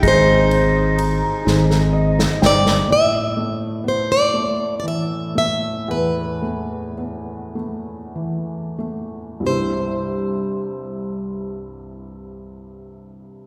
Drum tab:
RD |x-x-x-------|------------|------------|------------|
SD |------oo-ooo|------------|------------|------------|
BD |o-----------|------------|------------|------------|